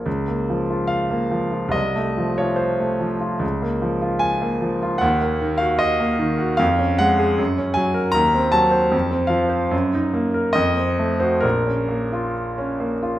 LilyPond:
<<
  \new Staff \with { instrumentName = "Grand piano" } { \time 2/4 \key bes \minor \tempo 4 = 74 r4 f''4 | ees''8. des''16 c''4 | r4 aes''4 | ges''8. f''16 ees''4 |
f''8 ges''4 aes''8 | bes''8 a''4 f''8 | r4 ees''8. c''16 | bes'4 r4 | }
  \new Staff \with { instrumentName = "Grand piano" } { \time 2/4 \key bes \minor des,16 bes16 f16 f'8 bes16 f16 f'16 | c,16 a16 f16 f'8 a16 f16 f'16 | des,16 bes16 f16 f'8 bes16 f16 f'16 | ees,16 bes16 ees16 ges'8 bes16 ees16 ges'16 |
f,16 des'16 aes16 aes'16 ges,16 des'16 ges16 bes'16 | ees,16 c'16 ges16 c''16 f,16 c'16 f16 c''16 | ges,16 ees'16 bes16 bes'16 f,16 c'16 a16 ges'16 | bes,,16 des'16 bes16 f'8 des'16 bes16 f'16 | }
>>